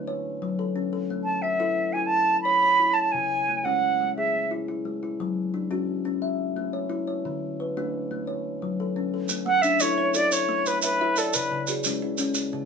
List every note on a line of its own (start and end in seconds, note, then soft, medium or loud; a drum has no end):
0.07 0.58 C#5 medium
0.42 0.76 F#3 medium
0.59 0.92 A4 medium
0.76 1.09 C#4 medium
0.93 1.27 A4 medium
1.10 1.44 A3 medium
1.24 1.44 A5 medium
1.42 1.94 E5 medium
1.42 1.95 F#5 medium
1.60 1.94 E4 medium
1.60 2.11 A4 medium
1.93 2.29 E4 medium
1.93 2.08 G#5 medium
2.06 2.41 A5 medium
2.42 2.62 C#5 medium
2.42 2.95 B5 loud
2.63 3.14 C#5 medium
2.80 3.14 E4 medium
2.94 3.13 A5 medium
3.12 3.48 C#3 medium
3.12 3.66 G#5 medium
3.49 4.00 A3 medium
3.65 3.99 G#3 medium
3.65 4.17 C#4 medium
3.65 4.16 F#5 medium
4.00 4.34 G#3 medium
4.17 4.69 G#4 medium
4.17 4.52 E5 medium
4.51 4.67 E4 medium
4.68 5.02 E4 medium
4.85 5.19 G#3 medium
5.03 5.37 E4 medium
5.20 5.54 F#3 medium
5.54 6.05 D4 medium
5.71 6.04 C#4 medium
5.71 6.22 F#4 medium
6.05 6.22 C#4 medium
6.22 6.73 E5 medium
6.57 6.91 A3 medium
6.73 7.06 C#5 medium
6.90 7.24 E4 medium
7.08 7.42 C#5 medium
7.25 7.59 D3 medium
7.60 8.11 B4 medium
7.77 8.10 A3 medium
7.77 8.28 D4 medium
8.11 8.27 A3 medium
8.27 8.78 C#5 medium
8.62 8.96 F#3 medium
8.80 9.13 A4 medium
8.96 9.30 C#4 medium
9.14 9.47 A4 medium
9.29 9.64 A3 medium
9.29 maracas medium
9.46 9.80 A3 medium
9.46 9.63 F#5 loud
9.62 10.15 D4 medium
9.62 9.83 E5 loud
9.62 10.15 E5 medium
9.62 maracas medium
9.80 10.14 E4 medium
9.80 10.32 A4 medium
9.80 9.96 C#5 medium
9.80 10.18 C#5 loud
9.80 maracas medium
9.98 10.32 C#5 medium
10.14 10.49 E4 medium
10.14 10.66 A4 medium
10.14 10.34 D5 loud
10.14 maracas medium
10.32 10.69 C#5 medium
10.32 maracas medium
10.49 10.83 A3 medium
10.66 10.83 B4 medium
10.66 10.83 C#5 medium
10.66 maracas medium
10.82 11.20 B4 medium
10.82 11.35 C#5 medium
10.82 11.00 E5 medium
10.82 maracas medium
11.01 11.35 E4 medium
11.01 11.52 E5 medium
11.16 11.36 A4 medium
11.16 11.52 D5 medium
11.16 maracas medium
11.33 11.69 C#3 medium
11.33 11.72 B4 medium
11.33 maracas medium
11.52 11.85 C#3 medium
11.67 12.19 F#4 medium
11.67 12.20 G#4 medium
11.67 maracas medium
11.84 12.20 G#3 medium
11.84 12.37 C#4 medium
11.84 12.01 E4 medium
11.84 maracas medium
12.02 12.36 E4 medium
12.18 12.54 G#3 medium
12.18 12.65 C#4 medium
12.18 maracas medium
12.34 maracas medium
12.53 12.65 C#3 medium